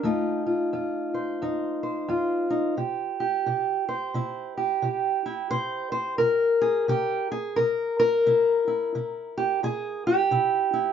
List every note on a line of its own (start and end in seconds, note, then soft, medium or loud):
0.03 0.67 F2 medium
0.03 2.75 A3 soft
0.03 1.41 D#4 medium
0.03 0.45 F4 medium
0.46 0.72 F4 soft
0.73 1.36 F2 medium
0.73 2.08 F4 soft
1.14 1.83 C5 soft
1.42 2.05 F2 medium
1.42 2.49 D#4 soft
1.83 3.20 C5 soft
2.08 2.72 F2 medium
2.08 2.75 F4 medium
2.50 2.74 D#4 medium
2.77 3.41 C3 medium
2.77 3.20 G4 medium
3.20 3.47 G4 medium
3.46 4.10 C3 medium
3.46 4.57 G4 medium
3.89 4.57 C5 medium
4.14 4.78 C3 medium
4.14 5.25 E4 medium
4.57 4.84 G4 medium
4.82 5.46 C3 medium
4.82 6.61 G4 medium
5.26 6.21 E4 medium
5.51 6.15 C3 medium
5.51 5.91 C5 loud
5.92 6.18 C5 medium
6.18 6.84 C3 medium
6.18 7.29 A#4 medium
6.62 6.89 G#4 medium
6.88 7.52 C3 medium
6.88 7.31 G4 loud
7.32 7.58 G#4 loud
7.56 8.21 C3 medium
7.56 7.98 A#4 medium
8.00 10.05 A#4 loud
8.26 8.89 C3 medium
8.26 8.66 E4 medium
8.68 8.94 E4 soft
8.95 9.58 C3 medium
8.95 10.30 E4 soft
9.37 9.64 G4 medium
9.63 10.26 C3 medium
9.63 10.05 G#4 loud
10.07 10.93 G4 medium
10.31 10.93 C3 medium
10.31 10.72 E4 medium
10.73 10.93 E4 soft